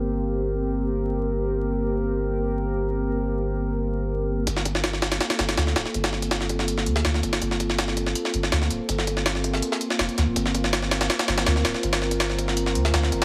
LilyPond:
<<
  \new Staff \with { instrumentName = "Ambient pad" } { \time 4/4 \key g \minor \tempo 4 = 163 << { bes'1~ | bes'1~ | bes'1 | a'1~ |
a'1~ | a'1~ | a'1 | bes'1~ |
bes'1 | } \\ { <bes c' g'>1~ | <bes c' g'>1~ | <bes c' g'>1 | <bes c' f'>1~ |
<bes c' f'>1~ | <bes c' f'>1~ | <bes c' f'>1~ | <bes c' f'>1~ |
<bes c' f'>1 | } >> }
  \new Staff \with { instrumentName = "Sub bass" } { \clef bass \time 4/4 \key g \minor g,,1~ | g,,1~ | g,,1 | g,,2 r8 g,,8 d,8 r8 |
g,,2~ g,,8 d,8 d,8 g,,8 | g,,2 r8 g,,8 d,8 d,,16 r16 | g,,2 r4 f,,16 r16 d,16 d,,16 | g,,2 r8 g,,8 d,8 d,,16 r16 |
g,,2~ g,,8 d,8 d,8 g,,8 | }
  \new DrumStaff \with { instrumentName = "Drums" } \drummode { \time 4/4 r4 r4 r4 r4 | r4 r4 r4 r4 | r4 r4 r4 r4 | <hh bd>16 sn16 <hh bd>16 sn16 <hh sn>16 sn16 <hh sn>16 <hh sn>16 <hh sn>16 <hh sn>16 <hh sn>16 <hh sn>16 <hh sn>16 sn16 <hh sn>16 sn16 |
<hh bd>16 <hh sn>16 sn16 <hh bd>16 <hh sn>16 sn16 <hh bd>16 sn16 hh16 sn16 hh16 sn16 <hh sn>16 sn16 <hh bd>16 <hh sn>16 | <hh bd>16 sn16 <hh bd>16 sn16 <hh sn>16 sn16 <hh bd>16 sn16 hh16 sn16 hh16 sn16 <hh sn>16 sn16 hh8 | <hh bd>16 sn16 <hh bd>16 sn16 <hh sn>16 sn16 <hh bd>16 sn16 hh16 sn16 hh16 sn16 <hh sn>16 hh16 <hh sn>8 | <hh bd>16 sn16 <hh bd>16 sn16 <hh sn>16 sn16 <hh sn>16 <hh sn>16 <hh sn>16 <hh sn>16 <hh sn>16 <hh sn>16 <hh sn>16 sn16 <hh sn>16 sn16 |
<hh bd>16 <hh sn>16 sn16 <hh bd>16 <hh sn>16 sn16 <hh bd>16 sn16 hh16 sn16 hh16 sn16 <hh sn>16 sn16 <hh bd>8 | }
>>